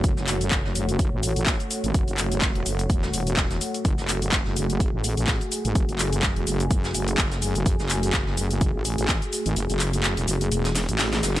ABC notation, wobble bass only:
X:1
M:4/4
L:1/16
Q:"Swing 16ths" 1/4=126
K:F#m
V:1 name="Wobble bass" clef=bass
F,,, F,,,4 F,,,4 A,,,2 A,,,2 z2 G,,, | F,,, F,,,4 E,,, F,,,2 E,,,2 E,,,4 z2 | F,,, F,,,4 F,,,4 A,,,2 A,,,2 z2 G,,, | F,,, F,,,4 E,,, F,,,4 F,,,2 F,,,3 F,,, |
F,,, F,,,4 F,,,4 A,,,2 A,,,2 z2 G,,, | F,,, F,,,4 E,,, F,,,2 E,,,3 A,,,3 F,,,2 |]